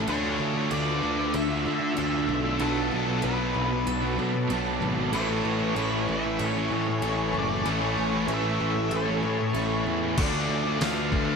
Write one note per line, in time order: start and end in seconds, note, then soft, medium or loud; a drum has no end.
0.07 0.39 D2 medium
0.07 0.69 D3 medium
0.07 0.58 A3 medium
0.07 2.58 D4 medium
0.07 0.57 D4 medium
0.07 2.58 F4 medium
0.07 0.70 A4 medium
0.07 0.71 C#5 medium
0.07 2.58 E6 medium
0.11 0.54 F4 loud
0.24 muted distorted electric guitar stroke medium
0.40 0.71 D2 medium
0.55 0.71 A3 medium
0.55 0.72 D4 medium
0.55 0.73 F4 medium
0.70 1.02 D2 medium
0.70 1.00 D3 medium
0.70 0.89 A3 medium
0.70 0.88 D4 medium
0.70 0.85 F4 medium
0.70 1.33 B4 medium
0.70 1.35 D5 medium
0.86 1.02 A3 medium
0.86 1.04 D4 medium
0.86 1.04 F4 medium
1.02 1.34 D2 medium
1.02 1.50 D3 medium
1.02 1.18 A3 medium
1.02 1.17 D4 medium
1.02 1.16 F4 medium
1.18 muted overdriven electric guitar stroke medium
1.34 1.65 D2 medium
1.34 1.97 A4 medium
1.34 2.65 E5 loud
1.49 1.65 A3 medium
1.49 1.65 D4 medium
1.49 1.66 F4 medium
1.64 1.93 D3 medium
1.64 1.97 D3 medium
1.64 1.80 A3 medium
1.64 1.79 D4 medium
1.64 1.79 F4 medium
1.80 muted overdriven electric guitar stroke medium
1.80 muted distorted electric guitar stroke soft
1.94 2.57 D3 medium
1.94 2.46 A3 medium
1.94 2.44 D4 medium
1.94 2.42 F4 loud
1.94 2.59 A4 medium
1.99 2.28 D2 medium
2.27 2.60 B1 medium
2.27 2.58 D3 medium
2.27 2.46 A3 medium
2.27 2.42 D4 medium
2.43 2.60 A3 medium
2.43 2.59 D4 medium
2.43 2.58 F4 medium
2.58 2.92 B1 loud
2.58 3.20 B2 loud
2.58 3.21 F#3 medium
2.58 3.08 B3 loud
2.58 3.06 D4 medium
2.58 3.05 F#4 loud
2.58 3.25 A4 medium
2.58 3.24 A4 medium
2.58 5.11 B4 medium
2.58 5.11 A5 medium
2.58 5.11 D6 medium
2.64 5.13 B3 medium
2.75 muted distorted electric guitar stroke medium
2.93 3.23 B1 medium
3.06 3.22 B3 medium
3.06 3.23 D4 medium
3.06 3.24 F#4 medium
3.10 3.23 F#3 medium
3.22 3.55 B1 medium
3.22 3.70 B2 medium
3.22 3.52 F#3 medium
3.22 3.40 B3 medium
3.22 3.38 D4 loud
3.22 3.36 F#4 loud
3.22 3.86 B4 medium
3.22 3.84 B4 medium
3.38 3.53 B3 medium
3.38 3.54 D4 medium
3.38 3.55 F#4 medium
3.53 3.86 B1 medium
3.53 3.70 F#3 medium
3.53 3.69 B3 medium
3.53 3.69 D4 medium
3.53 3.69 F#4 medium
3.70 muted overdriven electric guitar stroke medium
3.87 4.17 B1 medium
3.87 4.50 A4 medium
4.00 4.17 F#3 medium
4.00 4.16 B3 medium
4.00 4.17 D4 medium
4.00 4.18 F#4 medium
4.16 4.49 B2 medium
4.16 4.33 F#3 medium
4.16 4.33 B3 medium
4.16 4.32 D4 medium
4.16 4.32 F#4 medium
4.33 muted overdriven electric guitar stroke medium
4.33 muted distorted electric guitar stroke medium
4.47 4.81 B1 medium
4.47 5.10 B2 medium
4.47 5.11 F#3 loud
4.47 4.98 B3 loud
4.47 4.96 D4 medium
4.47 4.94 F#4 medium
4.47 5.13 A4 medium
4.81 5.12 G#1 medium
4.81 5.11 B2 medium
4.81 4.98 F#3 medium
4.81 4.95 B3 medium
4.96 5.13 F#3 medium
4.96 5.12 B3 medium
4.96 5.12 D4 medium
4.96 5.11 F#4 medium
5.11 5.44 A1 loud
5.11 5.73 A2 loud
5.11 5.74 E3 medium
5.11 5.61 A3 medium
5.11 5.60 C#4 medium
5.11 5.58 E4 loud
5.11 10.13 A4 medium
5.11 5.76 A4 medium
5.11 10.12 G#5 medium
5.11 10.13 C#6 medium
5.15 7.67 E3 loud
5.15 7.69 A3 loud
5.15 6.11 C#5 medium
5.29 muted distorted electric guitar stroke soft
5.45 5.75 A1 medium
5.59 5.75 E3 medium
5.59 5.75 A3 medium
5.59 5.76 C#4 medium
5.59 5.77 E4 medium
5.74 6.07 A1 medium
5.74 7.02 A2 medium
5.74 6.06 E3 loud
5.74 5.93 A3 medium
5.74 5.92 C#4 loud
5.74 5.90 E4 loud
5.74 6.39 B4 medium
5.90 6.07 A3 medium
5.90 6.08 C#4 medium
5.90 6.09 E4 medium
6.07 6.39 A1 medium
6.07 6.24 E3 medium
6.07 6.24 A3 medium
6.07 6.23 C#4 medium
6.07 6.24 E4 medium
6.11 6.42 E5 loud
6.24 muted overdriven electric guitar stroke soft
6.39 6.70 A1 medium
6.39 7.02 A4 medium
6.45 7.38 C#5 loud
6.53 6.71 E3 medium
6.53 6.72 A3 medium
6.53 6.71 C#4 medium
6.53 6.74 E4 medium
6.57 6.72 A3 medium
6.70 7.00 A2 medium
6.70 7.01 A2 medium
6.70 6.88 E3 medium
6.70 6.87 A3 medium
6.70 6.86 C#4 medium
6.74 6.87 E4 medium
6.86 muted distorted electric guitar stroke soft
6.86 muted overdriven electric guitar stroke medium
7.02 7.33 A1 medium
7.02 7.63 A2 medium
7.02 7.65 E3 medium
7.02 7.52 A3 medium
7.02 7.50 C#4 medium
7.02 7.66 A4 medium
7.07 7.49 E4 loud
7.32 7.64 F#1 medium
7.32 7.63 A2 medium
7.32 7.50 E3 medium
7.32 7.48 A3 medium
7.39 7.69 D5 medium
7.49 7.65 E3 medium
7.49 7.66 A3 medium
7.49 7.66 C#4 medium
7.49 7.67 E4 medium
7.53 7.66 A3 medium
7.64 7.96 A1 medium
7.64 8.26 A2 medium
7.64 8.28 E3 medium
7.64 8.15 A3 loud
7.64 8.13 C#4 loud
7.64 8.12 E4 loud
7.64 8.31 A4 medium
7.71 8.33 C#5 medium
7.81 muted distorted electric guitar stroke soft
7.98 8.27 A1 medium
8.12 8.29 E3 medium
8.12 8.29 A3 medium
8.12 8.29 C#4 medium
8.12 8.31 E4 medium
8.27 8.58 A1 medium
8.27 8.75 A2 loud
8.27 8.58 E3 medium
8.27 8.46 A3 medium
8.27 8.43 C#4 medium
8.27 8.42 E4 medium
8.27 8.92 B4 medium
8.34 8.96 E5 medium
8.43 8.59 A3 medium
8.43 8.60 C#4 medium
8.43 8.62 E4 medium
8.59 8.91 A1 medium
8.59 8.74 E3 medium
8.59 8.75 A3 medium
8.59 8.74 C#4 medium
8.59 8.74 E4 medium
8.75 muted overdriven electric guitar stroke soft
8.91 9.22 A1 medium
8.91 9.55 A4 medium
8.97 9.85 C#5 medium
9.06 9.23 A3 medium
9.06 9.23 C#4 medium
9.06 9.24 E4 medium
9.10 9.23 E3 medium
9.21 9.53 A2 medium
9.21 9.37 E3 medium
9.21 9.38 A3 medium
9.21 9.37 C#4 medium
9.21 9.37 E4 medium
9.38 muted overdriven electric guitar stroke soft
9.38 muted distorted electric guitar stroke soft
9.53 9.85 A1 medium
9.53 10.15 A2 medium
9.53 10.16 E3 medium
9.53 10.04 A3 loud
9.53 10.02 C#4 medium
9.53 10.00 E4 medium
9.53 10.18 A4 medium
9.86 10.17 E2 medium
9.86 10.15 A2 medium
9.86 10.02 E3 medium
9.86 10.00 A3 medium
10.01 10.17 E3 medium
10.01 10.16 A3 medium
10.01 10.16 C#4 medium
10.01 10.15 E4 medium
10.16 10.48 D2 medium
10.16 10.77 D3 medium
10.16 10.66 A3 medium
10.16 10.65 D4 loud
10.16 11.36 F4 medium
10.16 10.62 F4 medium
10.16 10.81 A4 medium
10.16 11.36 D5 medium
10.16 10.83 D5 medium
10.16 11.36 E6 medium
10.16 kick loud
10.16 crash loud
10.33 muted distorted electric guitar stroke medium
10.49 10.79 D2 medium
10.63 10.79 A3 medium
10.63 10.80 D4 medium
10.63 10.81 F4 medium
10.79 11.11 D2 medium
10.79 11.09 D3 medium
10.79 10.97 A3 medium
10.79 10.96 D4 loud
10.79 10.93 F4 loud
10.79 11.36 B4 medium
10.79 11.36 F5 medium
10.79 snare loud
10.79 open hi-hat medium
10.94 11.11 A3 medium
10.94 11.12 D4 medium
10.94 11.11 F4 medium
11.10 11.36 D2 medium
11.10 11.36 D3 medium
11.10 11.27 A3 medium
11.10 11.26 D4 medium
11.10 11.26 F4 medium
11.10 kick medium
11.27 muted overdriven electric guitar stroke soft